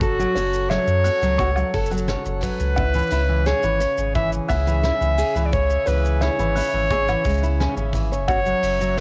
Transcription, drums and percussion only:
0.01 kick loud
0.01 shaker medium
0.20 shaker soft
0.35 open hi-hat medium
0.35 shaker medium
0.53 shaker soft
0.71 snare loud
0.71 shaker medium
0.88 shaker soft
1.04 open hi-hat loud
1.04 shaker medium
1.22 shaker soft
1.39 kick loud
1.39 shaker medium
1.56 low woodblock medium
1.56 shaker soft
1.74 kick medium
1.74 open hi-hat medium
1.74 shaker soft
1.86 shaker medium
1.91 shaker soft
1.97 shaker medium
2.08 snare loud
2.08 shaker medium
2.25 shaker soft
2.40 kick medium
2.40 open hi-hat medium
2.40 shaker medium
2.60 shaker medium
2.77 kick loud
2.77 shaker medium
2.94 shaker soft
2.98 shaker soft
3.02 shaker soft
3.07 open hi-hat medium
3.07 shaker soft
3.11 shaker soft
3.11 shaker medium
3.15 shaker soft
3.24 shaker soft
3.46 snare loud
3.46 shaker medium
3.63 shaker soft
3.80 open hi-hat medium
3.80 shaker medium
3.98 shaker medium
4.15 kick loud
4.15 snare soft
4.15 shaker medium
4.32 shaker soft
4.49 kick medium
4.49 open hi-hat medium
4.49 low woodblock medium
4.49 shaker medium
4.67 shaker soft
4.83 snare medium
4.83 shaker medium
5.02 shaker soft
5.18 open hi-hat medium
5.18 shaker medium
5.36 shaker medium
5.53 kick loud
5.53 shaker medium
5.70 shaker soft
5.87 open hi-hat medium
5.87 shaker medium
6.05 shaker soft
6.21 snare loud
6.21 shaker medium
6.39 shaker soft
6.56 open hi-hat medium
6.56 shaker medium
6.60 shaker medium
6.62 shaker soft
6.64 shaker soft
6.69 shaker soft
6.71 shaker soft
6.91 kick loud
6.91 shaker soft
6.91 shaker medium
7.08 snare soft
7.08 low woodblock medium
7.08 shaker soft
7.25 kick medium
7.25 open hi-hat medium
7.25 shaker medium
7.29 shaker medium
7.34 shaker medium
7.38 shaker soft
7.43 shaker soft
7.60 snare medium
7.60 shaker medium
7.77 shaker soft
7.93 kick medium
7.93 open hi-hat medium
7.93 shaker medium
8.13 shaker medium
8.28 kick loud
8.28 shaker medium
8.46 shaker soft
8.63 open hi-hat medium
8.63 shaker medium
8.81 shaker medium

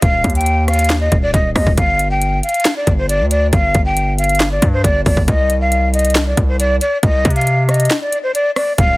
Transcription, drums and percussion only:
0.02 kick loud
0.02 closed hi-hat medium
0.24 kick loud
0.24 closed hi-hat medium
0.30 closed hi-hat medium
0.35 closed hi-hat medium
0.41 closed hi-hat medium
0.46 closed hi-hat medium
0.68 cross-stick medium
0.68 closed hi-hat soft
0.74 closed hi-hat medium
0.79 closed hi-hat medium
0.84 closed hi-hat medium
0.90 snare loud
0.90 clap loud
0.90 closed hi-hat medium
1.12 kick loud
1.12 closed hi-hat medium
1.34 kick loud
1.34 closed hi-hat medium
1.56 kick loud
1.56 cross-stick medium
1.56 open hi-hat medium
1.67 kick loud
1.78 kick loud
1.78 closed hi-hat medium
1.99 closed hi-hat medium
2.22 closed hi-hat medium
2.43 closed hi-hat medium
2.49 closed hi-hat medium
2.54 closed hi-hat medium
2.60 closed hi-hat medium
2.65 snare loud
2.65 clap loud
2.65 closed hi-hat medium
2.87 kick loud
2.87 closed hi-hat medium
3.09 closed hi-hat medium
3.31 closed hi-hat medium
3.53 kick loud
3.53 closed hi-hat medium
3.75 kick loud
3.75 closed hi-hat medium
3.97 closed hi-hat medium
4.18 closed hi-hat medium
4.24 closed hi-hat medium
4.29 closed hi-hat medium
4.35 closed hi-hat medium
4.40 snare loud
4.40 clap loud
4.40 closed hi-hat medium
4.62 kick loud
4.62 closed hi-hat medium
4.84 kick loud
4.84 closed hi-hat medium
5.06 kick medium
5.06 open hi-hat medium
5.17 kick loud
5.28 kick loud
5.28 closed hi-hat medium
5.50 closed hi-hat medium
5.72 closed hi-hat medium
5.94 closed hi-hat medium
5.99 closed hi-hat medium
6.05 closed hi-hat medium
6.10 closed hi-hat medium
6.15 snare loud
6.15 clap loud
6.15 closed hi-hat medium
6.37 kick loud
6.37 closed hi-hat medium
6.60 closed hi-hat medium
6.81 closed hi-hat medium
7.03 kick loud
7.03 closed hi-hat medium
7.25 kick loud
7.25 closed hi-hat medium
7.30 closed hi-hat medium
7.36 closed hi-hat medium
7.41 closed hi-hat medium
7.47 closed hi-hat medium
7.69 cross-stick medium
7.69 closed hi-hat soft
7.74 closed hi-hat medium
7.80 closed hi-hat medium
7.85 closed hi-hat medium
7.91 snare loud
7.91 clap loud
7.91 closed hi-hat medium
8.12 closed hi-hat medium
8.35 closed hi-hat medium
8.56 cross-stick loud
8.56 open hi-hat medium
8.78 kick loud
8.78 closed hi-hat medium

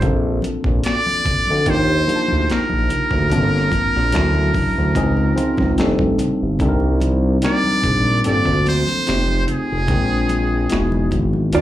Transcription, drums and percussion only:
0.01 kick loud
0.01 closed hi-hat medium
0.01 low conga medium
0.42 closed hi-hat medium
0.42 high conga medium
0.64 kick medium
0.84 finger snap medium
0.84 snare loud
0.84 closed hi-hat medium
0.84 muted conga soft
1.06 muted conga soft
1.06 high conga medium
1.25 kick medium
1.25 closed hi-hat medium
1.25 low conga medium
1.47 high conga medium
1.66 kick medium
1.66 closed hi-hat medium
2.08 closed hi-hat medium
2.08 high conga medium
2.28 high conga medium
2.50 finger snap medium
2.50 snare loud
2.50 closed hi-hat medium
2.69 muted conga soft
2.69 high conga medium
2.89 closed hi-hat medium
2.89 low conga medium
3.11 kick medium
3.30 closed hi-hat medium
3.30 muted conga soft
3.30 low conga medium
3.56 snare soft
3.72 kick medium
3.72 closed hi-hat medium
3.72 high conga medium
3.96 snare soft
4.12 finger snap medium
4.12 snare loud
4.12 closed hi-hat medium
4.12 muted conga soft
4.35 muted conga soft
4.35 high conga medium
4.54 kick medium
4.54 open hi-hat soft
4.54 low conga medium
4.76 high conga medium
4.95 kick medium
4.95 closed hi-hat loud
4.95 muted conga soft
5.17 muted conga soft
5.37 closed hi-hat medium
5.37 high conga medium
5.57 kick medium
5.57 snare soft
5.57 high conga medium
5.77 finger snap medium
5.77 snare loud
5.77 closed hi-hat medium
5.77 muted conga soft
5.99 kick medium
5.99 muted conga soft
5.99 high conga medium
6.18 closed hi-hat medium
6.18 low conga medium
6.59 kick loud
6.59 closed hi-hat medium
6.59 muted conga soft
6.59 low conga medium
6.80 muted conga soft
7.00 closed hi-hat medium
7.00 high conga medium
7.42 finger snap medium
7.42 snare loud
7.42 closed hi-hat medium
7.42 muted conga soft
7.64 muted conga soft
7.64 high conga medium
7.82 kick medium
7.82 closed hi-hat medium
7.82 low conga medium
8.04 high conga medium
8.24 closed hi-hat loud
8.24 muted conga soft
8.46 kick medium
8.46 muted conga soft
8.66 closed hi-hat medium
8.66 high conga medium
8.86 closed hi-hat soft
8.86 high conga medium
9.07 finger snap medium
9.07 snare loud
9.07 closed hi-hat medium
9.27 muted conga soft
9.27 high conga medium
9.47 closed hi-hat medium
9.47 low conga medium
9.87 kick loud
9.87 closed hi-hat medium
9.87 muted conga soft
9.87 low conga medium
10.09 muted conga soft
10.29 closed hi-hat medium
10.29 high conga medium
10.70 finger snap medium
10.70 snare loud
10.70 closed hi-hat medium
10.70 muted conga soft
10.92 muted conga soft
10.92 high conga medium
11.11 kick medium
11.11 closed hi-hat medium
11.11 low conga medium
11.33 high conga medium
11.53 closed hi-hat medium

